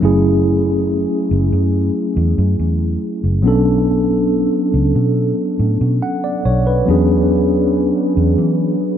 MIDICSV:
0, 0, Header, 1, 3, 480
1, 0, Start_track
1, 0, Tempo, 857143
1, 11, Time_signature, 4, 2, 24, 8
1, 5028, End_track
2, 0, Start_track
2, 0, Title_t, "Tine electric piano"
2, 0, Program_c, 0, 4
2, 0, Control_c, 0, 64, 127
2, 0, Note_on_c, 0, 54, 72
2, 5, Note_on_c, 0, 57, 67
2, 13, Note_on_c, 0, 61, 68
2, 18, Control_c, 0, 64, 0
2, 20, Note_on_c, 0, 64, 67
2, 27, Note_on_c, 0, 68, 82
2, 122, Control_c, 0, 64, 127
2, 1902, Note_off_c, 0, 54, 0
2, 1906, Note_off_c, 0, 57, 0
2, 1909, Note_off_c, 0, 61, 0
2, 1913, Note_off_c, 0, 64, 0
2, 1916, Note_off_c, 0, 68, 0
2, 1918, Note_on_c, 0, 54, 75
2, 1925, Note_on_c, 0, 59, 66
2, 1932, Note_on_c, 0, 61, 67
2, 1938, Control_c, 0, 64, 0
2, 1939, Note_on_c, 0, 62, 67
2, 1946, Note_on_c, 0, 69, 82
2, 2052, Control_c, 0, 64, 127
2, 3374, Note_on_c, 0, 78, 60
2, 3486, Note_off_c, 0, 78, 0
2, 3494, Note_on_c, 0, 74, 63
2, 3606, Note_off_c, 0, 74, 0
2, 3615, Note_on_c, 0, 73, 72
2, 3727, Note_off_c, 0, 73, 0
2, 3734, Note_on_c, 0, 71, 63
2, 3822, Note_off_c, 0, 54, 0
2, 3825, Note_off_c, 0, 59, 0
2, 3829, Note_off_c, 0, 61, 0
2, 3832, Note_off_c, 0, 62, 0
2, 3836, Note_off_c, 0, 69, 0
2, 3838, Note_on_c, 0, 54, 75
2, 3845, Note_on_c, 0, 59, 67
2, 3852, Note_on_c, 0, 61, 67
2, 3857, Control_c, 0, 64, 0
2, 3860, Note_on_c, 0, 62, 64
2, 3867, Note_on_c, 0, 68, 78
2, 3960, Note_off_c, 0, 71, 0
2, 3963, Control_c, 0, 64, 127
2, 5028, Note_off_c, 0, 54, 0
2, 5028, Note_off_c, 0, 59, 0
2, 5028, Note_off_c, 0, 61, 0
2, 5028, Note_off_c, 0, 62, 0
2, 5028, Note_off_c, 0, 68, 0
2, 5028, End_track
3, 0, Start_track
3, 0, Title_t, "Fingered electric bass"
3, 0, Program_c, 1, 33
3, 14, Note_on_c, 1, 30, 103
3, 590, Note_off_c, 1, 30, 0
3, 733, Note_on_c, 1, 30, 87
3, 835, Note_off_c, 1, 30, 0
3, 853, Note_on_c, 1, 42, 86
3, 1058, Note_off_c, 1, 42, 0
3, 1212, Note_on_c, 1, 40, 93
3, 1314, Note_off_c, 1, 40, 0
3, 1333, Note_on_c, 1, 42, 91
3, 1435, Note_off_c, 1, 42, 0
3, 1453, Note_on_c, 1, 40, 85
3, 1658, Note_off_c, 1, 40, 0
3, 1812, Note_on_c, 1, 30, 78
3, 1933, Note_off_c, 1, 30, 0
3, 1933, Note_on_c, 1, 35, 98
3, 2509, Note_off_c, 1, 35, 0
3, 2653, Note_on_c, 1, 37, 86
3, 2755, Note_off_c, 1, 37, 0
3, 2773, Note_on_c, 1, 47, 89
3, 2978, Note_off_c, 1, 47, 0
3, 3133, Note_on_c, 1, 45, 90
3, 3235, Note_off_c, 1, 45, 0
3, 3253, Note_on_c, 1, 47, 84
3, 3355, Note_off_c, 1, 47, 0
3, 3613, Note_on_c, 1, 35, 93
3, 3818, Note_off_c, 1, 35, 0
3, 3854, Note_on_c, 1, 40, 96
3, 4430, Note_off_c, 1, 40, 0
3, 4574, Note_on_c, 1, 40, 86
3, 4675, Note_off_c, 1, 40, 0
3, 4694, Note_on_c, 1, 52, 94
3, 4898, Note_off_c, 1, 52, 0
3, 5028, End_track
0, 0, End_of_file